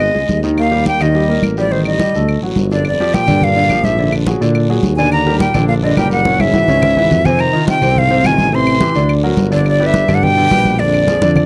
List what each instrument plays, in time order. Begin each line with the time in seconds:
Already playing: tuba G#1, trombone G#3, flute D#5
0.00 high conga, long guiro, claves
0.14 tuba C#2, grand piano G#3 G#4, high conga
0.28 tuba D#2, high conga, short guiro
0.43 grand piano D#3 D#4, high conga, short guiro
0.57 trombone A#3, flute F5, high conga, long guiro, claves
0.71 grand piano G3 G4, high conga
0.86 trombone A#3, flute G5, high conga, short guiro
1.00 tuba D#2, grand piano D#3 D#4, trombone G3, flute D#5, high conga, short guiro, claves
1.14 grand piano G3 G4, high conga, long guiro
1.28 grand piano A#3 A#4, high conga
1.43 tuba A1, high conga, short guiro, claves
1.57 trombone F3, grand piano G3 G4, flute D5, short guiro
1.71 grand piano D#3 D#4, trombone D#3, flute C5, high conga, long guiro
1.85 trombone G3, flute D#5, high conga, claves
1.99 grand piano G3 G4, high conga, short guiro
2.14 tuba D2, grand piano A3 A4, high conga, short guiro
2.28 high conga, long guiro, claves
2.42 tuba A1, grand piano F#3 F#4, high conga
2.56 tuba G1, high conga, short guiro
2.71 trombone F#2, grand piano D3 D4, flute D5, high conga, short guiro
2.85 trombone F2, flute D5, high conga, long guiro, claves
3.00 grand piano F3 F4 G4, high conga
3.14 trombone A#2, flute G5, high conga, short guiro
3.27 tuba G2, grand piano D3 D4 D5, high conga, low conga, short guiro, claves
3.42 trombone A#2, flute F5, high conga, low conga, long guiro
3.56 grand piano D3 D4 D5, high conga
3.69 tuba A#1, grand piano F3 F4 G4, high conga, short guiro, claves
3.84 trombone G#2, flute E5, high conga, short guiro
3.98 grand piano D3 D4 D5, high conga, long guiro
4.13 high conga, claves
4.27 grand piano F#3 F#4 G#4, high conga, short guiro
4.41 tuba A#2, grand piano D3 D4 D5, high conga, short guiro
4.55 high conga, long guiro, claves
4.69 grand piano F#3 F#4 G#4, high conga
4.83 tuba D#2, high conga, short guiro
4.96 trombone B2, grand piano D3 D4 D5, flute G#5, high conga, short guiro
5.12 trombone D3, flute A#5, high conga, long guiro, claves
5.26 grand piano G3 G4 A#4, high conga
5.40 trombone A#2, flute G5, high conga, short guiro
5.54 tuba A#1, grand piano D3 D4 D5, high conga, low conga, short guiro, claves
5.68 trombone A#2, flute F5, high conga, long guiro
5.83 trombone G2, grand piano D3 D4 D5, flute D#5, high conga
5.96 tuba F#1, trombone A#2, grand piano G3 G4 A#4, flute G5, high conga, short guiro, claves
6.11 trombone A#2, flute F#5, short guiro
6.25 grand piano C#3 C#4 C#5, high conga, long guiro
6.39 trombone G#2, flute E5, high conga, claves
6.53 grand piano E3 E4 F#4, high conga, short guiro
6.68 tuba C#2, grand piano C#3 C#4 C#5, low conga, short guiro
6.82 low conga, long guiro, claves
6.97 grand piano E3 E4 F#4, low conga
7.10 tuba F2, low conga, short guiro
7.25 trombone C3, grand piano C3 C4 C5, flute G#5, low conga, short guiro
7.38 trombone D#3, flute A#5, high conga, long guiro, claves
7.53 grand piano D#3 D#4 F4, high conga
7.67 trombone C3, flute G5, high conga, short guiro
7.81 tuba C2, grand piano C3 C4 C5, high conga, low conga, short guiro, claves
7.95 trombone G#2, flute F5, high conga, low conga, long guiro
8.10 grand piano C3 C4 C5, high conga
8.23 tuba A1, trombone C3, grand piano D#3 D#4 F4, flute G#5, high conga, short guiro, claves
8.38 high conga, short guiro
8.52 grand piano C3 C4 C5, trombone E3, flute C6, high conga, long guiro
8.67 high conga, claves
8.81 grand piano E3 E4 G4, high conga, short guiro
8.95 tuba D2, grand piano D3 D4 D5, high conga, short guiro
9.09 high conga, long guiro, claves
9.23 grand piano F#3 F#4 A#4, high conga
9.37 tuba G1, high conga, short guiro
9.51 trombone F2, grand piano D3 D4 D5, flute D5, high conga, short guiro
9.65 trombone G2, flute D5, high conga, long guiro, claves
9.80 grand piano G3 G4 B4, high conga
9.85 trombone G2, flute E5
9.94 high conga, short guiro
10.08 tuba G2, grand piano D3 D4 D5, high conga, low conga, short guiro, claves
10.14 trombone A2, flute F#5
10.23 trombone B2, flute G5, high conga, low conga, long guiro
10.37 grand piano D3 D4 D5, high conga
10.51 tuba A#1, grand piano G3 G4 B4, high conga, short guiro, claves
10.65 high conga, short guiro
10.79 trombone F2, grand piano D3 D4 D5, flute D5, high conga, long guiro
10.94 high conga, claves
11.07 grand piano F3 F4 G#4, high conga, short guiro
11.21 tuba F2, grand piano D3 D4 D5, high conga, short guiro
11.36 low conga, long guiro, claves